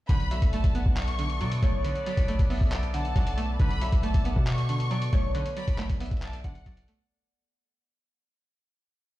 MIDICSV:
0, 0, Header, 1, 7, 480
1, 0, Start_track
1, 0, Key_signature, 2, "minor"
1, 0, Tempo, 437956
1, 101, Time_signature, 4, 2, 24, 8
1, 10078, End_track
2, 0, Start_track
2, 0, Title_t, "Violin section"
2, 0, Program_c, 0, 48
2, 99, Note_on_c, 0, 83, 112
2, 551, Note_off_c, 0, 83, 0
2, 582, Note_on_c, 0, 81, 79
2, 1033, Note_off_c, 0, 81, 0
2, 1060, Note_on_c, 0, 85, 101
2, 1977, Note_off_c, 0, 85, 0
2, 2261, Note_on_c, 0, 83, 78
2, 2489, Note_off_c, 0, 83, 0
2, 3222, Note_on_c, 0, 81, 90
2, 3899, Note_off_c, 0, 81, 0
2, 3942, Note_on_c, 0, 83, 109
2, 4393, Note_off_c, 0, 83, 0
2, 4422, Note_on_c, 0, 81, 88
2, 4873, Note_off_c, 0, 81, 0
2, 4901, Note_on_c, 0, 85, 95
2, 5817, Note_off_c, 0, 85, 0
2, 6101, Note_on_c, 0, 83, 95
2, 6329, Note_off_c, 0, 83, 0
2, 6820, Note_on_c, 0, 81, 80
2, 7049, Note_off_c, 0, 81, 0
2, 7060, Note_on_c, 0, 78, 82
2, 7737, Note_off_c, 0, 78, 0
2, 10078, End_track
3, 0, Start_track
3, 0, Title_t, "Harp"
3, 0, Program_c, 1, 46
3, 102, Note_on_c, 1, 71, 82
3, 338, Note_on_c, 1, 76, 78
3, 821, Note_on_c, 1, 78, 75
3, 1543, Note_on_c, 1, 74, 85
3, 1779, Note_on_c, 1, 73, 81
3, 1845, Note_off_c, 1, 74, 0
3, 2017, Note_off_c, 1, 71, 0
3, 2021, Note_on_c, 1, 71, 91
3, 2226, Note_off_c, 1, 76, 0
3, 2261, Note_on_c, 1, 74, 87
3, 2327, Note_off_c, 1, 73, 0
3, 2583, Note_off_c, 1, 78, 0
3, 2740, Note_on_c, 1, 76, 80
3, 2978, Note_off_c, 1, 74, 0
3, 2982, Note_on_c, 1, 74, 90
3, 3221, Note_on_c, 1, 78, 80
3, 3460, Note_off_c, 1, 78, 0
3, 3464, Note_on_c, 1, 78, 80
3, 3937, Note_off_c, 1, 71, 0
3, 3941, Note_on_c, 1, 71, 101
3, 4177, Note_off_c, 1, 76, 0
3, 4182, Note_on_c, 1, 76, 81
3, 4655, Note_off_c, 1, 78, 0
3, 4660, Note_on_c, 1, 78, 77
3, 5006, Note_off_c, 1, 74, 0
3, 5381, Note_on_c, 1, 74, 83
3, 5619, Note_on_c, 1, 73, 86
3, 5685, Note_off_c, 1, 74, 0
3, 5851, Note_off_c, 1, 71, 0
3, 5856, Note_on_c, 1, 71, 92
3, 6070, Note_off_c, 1, 76, 0
3, 6101, Note_on_c, 1, 74, 100
3, 6166, Note_off_c, 1, 73, 0
3, 6422, Note_off_c, 1, 78, 0
3, 6581, Note_on_c, 1, 76, 79
3, 6817, Note_off_c, 1, 74, 0
3, 6821, Note_on_c, 1, 74, 81
3, 7061, Note_on_c, 1, 78, 86
3, 7293, Note_off_c, 1, 74, 0
3, 7298, Note_on_c, 1, 74, 85
3, 8102, Note_off_c, 1, 71, 0
3, 8469, Note_off_c, 1, 76, 0
3, 8823, Note_off_c, 1, 78, 0
3, 9322, Note_off_c, 1, 74, 0
3, 10078, End_track
4, 0, Start_track
4, 0, Title_t, "Analog synth pad"
4, 0, Program_c, 2, 89
4, 99, Note_on_c, 2, 59, 80
4, 99, Note_on_c, 2, 69, 73
4, 99, Note_on_c, 2, 74, 88
4, 7736, Note_off_c, 2, 59, 0
4, 7736, Note_off_c, 2, 69, 0
4, 7736, Note_off_c, 2, 74, 0
4, 10078, End_track
5, 0, Start_track
5, 0, Title_t, "Synth pluck"
5, 0, Program_c, 3, 84
5, 101, Note_on_c, 3, 50, 100
5, 342, Note_on_c, 3, 54, 83
5, 582, Note_on_c, 3, 57, 91
5, 821, Note_on_c, 3, 59, 86
5, 1288, Note_off_c, 3, 50, 0
5, 1301, Note_on_c, 3, 50, 86
5, 1528, Note_off_c, 3, 54, 0
5, 1542, Note_on_c, 3, 54, 88
5, 1769, Note_off_c, 3, 57, 0
5, 1783, Note_on_c, 3, 57, 82
5, 2008, Note_off_c, 3, 50, 0
5, 2021, Note_off_c, 3, 59, 0
5, 2022, Note_on_c, 3, 50, 96
5, 2249, Note_off_c, 3, 54, 0
5, 2262, Note_on_c, 3, 54, 88
5, 2488, Note_off_c, 3, 57, 0
5, 2501, Note_on_c, 3, 57, 93
5, 2741, Note_on_c, 3, 59, 87
5, 3207, Note_off_c, 3, 50, 0
5, 3220, Note_on_c, 3, 50, 81
5, 3445, Note_off_c, 3, 54, 0
5, 3459, Note_on_c, 3, 54, 90
5, 3685, Note_off_c, 3, 57, 0
5, 3698, Note_on_c, 3, 57, 81
5, 3926, Note_off_c, 3, 50, 0
5, 3939, Note_on_c, 3, 50, 90
5, 3940, Note_off_c, 3, 54, 0
5, 3940, Note_off_c, 3, 57, 0
5, 3941, Note_off_c, 3, 59, 0
5, 4178, Note_on_c, 3, 54, 80
5, 4419, Note_on_c, 3, 57, 94
5, 4660, Note_on_c, 3, 59, 91
5, 5126, Note_off_c, 3, 50, 0
5, 5139, Note_on_c, 3, 50, 78
5, 5364, Note_off_c, 3, 54, 0
5, 5378, Note_on_c, 3, 54, 88
5, 5605, Note_off_c, 3, 57, 0
5, 5619, Note_on_c, 3, 57, 77
5, 5848, Note_off_c, 3, 50, 0
5, 5861, Note_off_c, 3, 59, 0
5, 5861, Note_on_c, 3, 50, 99
5, 6088, Note_off_c, 3, 54, 0
5, 6101, Note_on_c, 3, 54, 78
5, 6327, Note_off_c, 3, 57, 0
5, 6340, Note_on_c, 3, 57, 91
5, 6581, Note_on_c, 3, 59, 86
5, 7048, Note_off_c, 3, 50, 0
5, 7061, Note_on_c, 3, 50, 79
5, 7288, Note_off_c, 3, 54, 0
5, 7301, Note_on_c, 3, 54, 84
5, 7529, Note_off_c, 3, 57, 0
5, 7542, Note_on_c, 3, 57, 77
5, 7781, Note_off_c, 3, 50, 0
5, 7781, Note_off_c, 3, 54, 0
5, 7781, Note_off_c, 3, 59, 0
5, 7782, Note_off_c, 3, 57, 0
5, 10078, End_track
6, 0, Start_track
6, 0, Title_t, "808-style bass"
6, 0, Program_c, 4, 38
6, 101, Note_on_c, 4, 35, 116
6, 446, Note_off_c, 4, 35, 0
6, 461, Note_on_c, 4, 35, 107
6, 692, Note_off_c, 4, 35, 0
6, 701, Note_on_c, 4, 35, 100
6, 932, Note_off_c, 4, 35, 0
6, 941, Note_on_c, 4, 35, 108
6, 1540, Note_on_c, 4, 47, 100
6, 1557, Note_off_c, 4, 35, 0
6, 1769, Note_off_c, 4, 47, 0
6, 1782, Note_on_c, 4, 35, 106
6, 2127, Note_off_c, 4, 35, 0
6, 2382, Note_on_c, 4, 35, 106
6, 2612, Note_off_c, 4, 35, 0
6, 2623, Note_on_c, 4, 35, 101
6, 2852, Note_off_c, 4, 35, 0
6, 2861, Note_on_c, 4, 35, 105
6, 3437, Note_off_c, 4, 35, 0
6, 3460, Note_on_c, 4, 35, 107
6, 3921, Note_off_c, 4, 35, 0
6, 3940, Note_on_c, 4, 35, 118
6, 4286, Note_off_c, 4, 35, 0
6, 4301, Note_on_c, 4, 35, 102
6, 4532, Note_off_c, 4, 35, 0
6, 4541, Note_on_c, 4, 35, 102
6, 4771, Note_off_c, 4, 35, 0
6, 4781, Note_on_c, 4, 47, 106
6, 5587, Note_off_c, 4, 47, 0
6, 5621, Note_on_c, 4, 35, 108
6, 5966, Note_off_c, 4, 35, 0
6, 6221, Note_on_c, 4, 35, 103
6, 6451, Note_off_c, 4, 35, 0
6, 6462, Note_on_c, 4, 35, 101
6, 6692, Note_off_c, 4, 35, 0
6, 6701, Note_on_c, 4, 35, 103
6, 7047, Note_off_c, 4, 35, 0
6, 7061, Note_on_c, 4, 35, 102
6, 7291, Note_off_c, 4, 35, 0
6, 7300, Note_on_c, 4, 35, 109
6, 7531, Note_off_c, 4, 35, 0
6, 10078, End_track
7, 0, Start_track
7, 0, Title_t, "Drums"
7, 101, Note_on_c, 9, 36, 117
7, 101, Note_on_c, 9, 42, 67
7, 210, Note_off_c, 9, 36, 0
7, 210, Note_off_c, 9, 42, 0
7, 220, Note_on_c, 9, 42, 52
7, 330, Note_off_c, 9, 42, 0
7, 341, Note_on_c, 9, 42, 83
7, 450, Note_off_c, 9, 42, 0
7, 461, Note_on_c, 9, 36, 90
7, 461, Note_on_c, 9, 42, 61
7, 570, Note_off_c, 9, 36, 0
7, 570, Note_off_c, 9, 42, 0
7, 580, Note_on_c, 9, 42, 81
7, 690, Note_off_c, 9, 42, 0
7, 701, Note_on_c, 9, 36, 101
7, 701, Note_on_c, 9, 42, 64
7, 810, Note_off_c, 9, 42, 0
7, 811, Note_off_c, 9, 36, 0
7, 821, Note_on_c, 9, 42, 79
7, 931, Note_off_c, 9, 42, 0
7, 941, Note_on_c, 9, 36, 99
7, 1051, Note_off_c, 9, 36, 0
7, 1061, Note_on_c, 9, 42, 77
7, 1062, Note_on_c, 9, 39, 121
7, 1171, Note_off_c, 9, 39, 0
7, 1171, Note_off_c, 9, 42, 0
7, 1181, Note_on_c, 9, 42, 61
7, 1291, Note_off_c, 9, 42, 0
7, 1301, Note_on_c, 9, 42, 79
7, 1411, Note_off_c, 9, 42, 0
7, 1421, Note_on_c, 9, 42, 59
7, 1531, Note_off_c, 9, 42, 0
7, 1542, Note_on_c, 9, 42, 63
7, 1652, Note_off_c, 9, 42, 0
7, 1662, Note_on_c, 9, 42, 86
7, 1771, Note_off_c, 9, 42, 0
7, 1781, Note_on_c, 9, 36, 105
7, 1782, Note_on_c, 9, 42, 67
7, 1891, Note_off_c, 9, 36, 0
7, 1891, Note_off_c, 9, 42, 0
7, 2022, Note_on_c, 9, 42, 66
7, 2132, Note_off_c, 9, 42, 0
7, 2142, Note_on_c, 9, 42, 53
7, 2252, Note_off_c, 9, 42, 0
7, 2262, Note_on_c, 9, 42, 82
7, 2372, Note_off_c, 9, 42, 0
7, 2382, Note_on_c, 9, 36, 86
7, 2382, Note_on_c, 9, 42, 64
7, 2491, Note_off_c, 9, 36, 0
7, 2492, Note_off_c, 9, 42, 0
7, 2502, Note_on_c, 9, 42, 83
7, 2612, Note_off_c, 9, 42, 0
7, 2622, Note_on_c, 9, 36, 101
7, 2622, Note_on_c, 9, 42, 65
7, 2732, Note_off_c, 9, 36, 0
7, 2732, Note_off_c, 9, 42, 0
7, 2742, Note_on_c, 9, 46, 83
7, 2852, Note_off_c, 9, 46, 0
7, 2861, Note_on_c, 9, 36, 99
7, 2971, Note_off_c, 9, 36, 0
7, 2982, Note_on_c, 9, 39, 117
7, 2982, Note_on_c, 9, 42, 79
7, 3091, Note_off_c, 9, 39, 0
7, 3091, Note_off_c, 9, 42, 0
7, 3102, Note_on_c, 9, 42, 63
7, 3212, Note_off_c, 9, 42, 0
7, 3222, Note_on_c, 9, 42, 80
7, 3331, Note_off_c, 9, 42, 0
7, 3342, Note_on_c, 9, 42, 59
7, 3452, Note_off_c, 9, 42, 0
7, 3460, Note_on_c, 9, 36, 94
7, 3461, Note_on_c, 9, 42, 63
7, 3570, Note_off_c, 9, 36, 0
7, 3571, Note_off_c, 9, 42, 0
7, 3581, Note_on_c, 9, 42, 86
7, 3690, Note_off_c, 9, 42, 0
7, 3701, Note_on_c, 9, 42, 68
7, 3811, Note_off_c, 9, 42, 0
7, 3941, Note_on_c, 9, 36, 115
7, 3941, Note_on_c, 9, 42, 65
7, 4050, Note_off_c, 9, 42, 0
7, 4051, Note_off_c, 9, 36, 0
7, 4061, Note_on_c, 9, 42, 53
7, 4170, Note_off_c, 9, 42, 0
7, 4181, Note_on_c, 9, 42, 80
7, 4290, Note_off_c, 9, 42, 0
7, 4300, Note_on_c, 9, 42, 62
7, 4301, Note_on_c, 9, 36, 89
7, 4410, Note_off_c, 9, 42, 0
7, 4411, Note_off_c, 9, 36, 0
7, 4420, Note_on_c, 9, 42, 83
7, 4530, Note_off_c, 9, 42, 0
7, 4540, Note_on_c, 9, 42, 64
7, 4541, Note_on_c, 9, 36, 104
7, 4650, Note_off_c, 9, 42, 0
7, 4651, Note_off_c, 9, 36, 0
7, 4660, Note_on_c, 9, 42, 81
7, 4770, Note_off_c, 9, 42, 0
7, 4781, Note_on_c, 9, 36, 103
7, 4890, Note_off_c, 9, 36, 0
7, 4900, Note_on_c, 9, 39, 122
7, 4900, Note_on_c, 9, 42, 79
7, 5009, Note_off_c, 9, 42, 0
7, 5010, Note_off_c, 9, 39, 0
7, 5020, Note_on_c, 9, 42, 63
7, 5130, Note_off_c, 9, 42, 0
7, 5140, Note_on_c, 9, 42, 82
7, 5249, Note_off_c, 9, 42, 0
7, 5260, Note_on_c, 9, 42, 58
7, 5370, Note_off_c, 9, 42, 0
7, 5380, Note_on_c, 9, 42, 65
7, 5490, Note_off_c, 9, 42, 0
7, 5500, Note_on_c, 9, 42, 87
7, 5609, Note_off_c, 9, 42, 0
7, 5619, Note_on_c, 9, 42, 67
7, 5620, Note_on_c, 9, 36, 103
7, 5729, Note_off_c, 9, 42, 0
7, 5730, Note_off_c, 9, 36, 0
7, 5860, Note_on_c, 9, 42, 66
7, 5970, Note_off_c, 9, 42, 0
7, 5980, Note_on_c, 9, 42, 54
7, 6090, Note_off_c, 9, 42, 0
7, 6100, Note_on_c, 9, 42, 80
7, 6210, Note_off_c, 9, 42, 0
7, 6221, Note_on_c, 9, 36, 91
7, 6221, Note_on_c, 9, 42, 62
7, 6331, Note_off_c, 9, 36, 0
7, 6331, Note_off_c, 9, 42, 0
7, 6341, Note_on_c, 9, 39, 93
7, 6341, Note_on_c, 9, 42, 84
7, 6451, Note_off_c, 9, 39, 0
7, 6451, Note_off_c, 9, 42, 0
7, 6461, Note_on_c, 9, 42, 66
7, 6462, Note_on_c, 9, 36, 97
7, 6571, Note_off_c, 9, 36, 0
7, 6571, Note_off_c, 9, 42, 0
7, 6581, Note_on_c, 9, 42, 79
7, 6581, Note_on_c, 9, 46, 84
7, 6641, Note_off_c, 9, 42, 0
7, 6641, Note_on_c, 9, 42, 68
7, 6691, Note_off_c, 9, 46, 0
7, 6701, Note_off_c, 9, 42, 0
7, 6701, Note_on_c, 9, 36, 103
7, 6701, Note_on_c, 9, 42, 60
7, 6761, Note_off_c, 9, 42, 0
7, 6761, Note_on_c, 9, 42, 48
7, 6811, Note_off_c, 9, 36, 0
7, 6821, Note_off_c, 9, 42, 0
7, 6821, Note_on_c, 9, 39, 121
7, 6821, Note_on_c, 9, 42, 81
7, 6930, Note_off_c, 9, 39, 0
7, 6930, Note_off_c, 9, 42, 0
7, 6941, Note_on_c, 9, 42, 62
7, 7050, Note_off_c, 9, 42, 0
7, 7060, Note_on_c, 9, 42, 78
7, 7061, Note_on_c, 9, 36, 100
7, 7170, Note_off_c, 9, 42, 0
7, 7171, Note_off_c, 9, 36, 0
7, 7181, Note_on_c, 9, 42, 60
7, 7290, Note_off_c, 9, 42, 0
7, 7300, Note_on_c, 9, 36, 93
7, 7300, Note_on_c, 9, 42, 64
7, 7410, Note_off_c, 9, 36, 0
7, 7410, Note_off_c, 9, 42, 0
7, 7421, Note_on_c, 9, 42, 89
7, 7531, Note_off_c, 9, 42, 0
7, 7541, Note_on_c, 9, 42, 68
7, 7650, Note_off_c, 9, 42, 0
7, 10078, End_track
0, 0, End_of_file